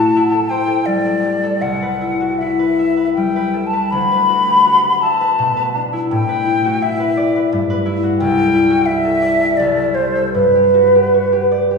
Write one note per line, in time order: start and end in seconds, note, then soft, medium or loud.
0.00 1.65 A2 soft
0.00 1.65 A3 soft
0.00 0.15 E4 soft
0.00 0.28 F#4 soft
0.00 0.31 A4 soft
0.00 0.51 A5 medium
0.16 2.00 E4 soft
0.32 0.66 A4 soft
0.49 4.41 C5 soft
0.49 0.87 G5 medium
0.67 1.04 A4 soft
0.86 3.16 G3 soft
0.86 1.63 D5 medium
1.06 1.42 A4 soft
1.24 1.56 G4 soft
1.44 1.65 A4 soft
1.62 3.94 C2 soft
1.62 2.40 F#5 medium
1.82 2.58 B4 soft
2.01 2.40 E4 soft
2.21 2.53 F#4 soft
2.39 5.42 E4 soft
2.39 3.13 E5 medium
2.59 2.96 B4 soft
2.79 5.02 E5 soft
2.97 3.35 B4 soft
3.14 3.96 G3 soft
3.14 3.68 G5 medium
3.36 3.72 B4 soft
3.54 3.86 A4 soft
3.67 3.92 A5 medium
3.73 4.10 B4 soft
3.91 5.42 D2 soft
3.91 5.03 B5 medium
4.12 4.83 B4 soft
4.29 4.65 F#4 soft
4.48 4.78 G4 soft
4.66 6.14 F#4 soft
4.85 5.20 B4 soft
5.02 5.42 E5 soft
5.02 5.83 A5 medium
5.21 5.56 B4 soft
5.39 6.14 B2 soft
5.57 6.27 B4 soft
5.75 9.60 D4 soft
5.93 6.24 E4 soft
6.11 7.55 A2 soft
6.11 6.84 G5 medium
6.29 6.99 B4 soft
6.45 6.81 E4 soft
6.65 6.95 F#4 soft
6.82 7.84 E4 soft
6.82 7.53 E5 medium
7.00 7.34 B4 soft
7.17 9.21 D5 soft
7.36 7.69 B4 soft
7.52 8.23 G2 soft
7.70 8.23 B4 soft
7.86 8.53 E4 soft
8.03 8.32 F#4 soft
8.19 9.58 C2 soft
8.19 8.88 G5 medium
8.38 9.03 A4 soft
8.54 8.87 E4 soft
8.70 8.99 F#4 soft
8.86 9.61 E4 soft
8.86 9.59 E5 medium
9.05 9.40 A4 soft
9.22 9.61 D5 soft
9.41 9.75 A4 soft
9.57 10.39 C2 soft
9.57 9.96 D5 medium
9.77 10.14 A4 soft
9.94 10.54 G4 soft
9.94 10.33 C5 medium
10.15 10.49 A4 soft
10.34 11.78 G2 soft
10.34 11.78 B4 medium
10.55 10.94 G4 soft
10.74 11.12 F#4 soft
10.95 11.27 G4 soft
11.14 11.78 F#4 soft
11.32 11.70 G4 soft
11.52 11.78 D5 soft
11.71 11.78 G4 soft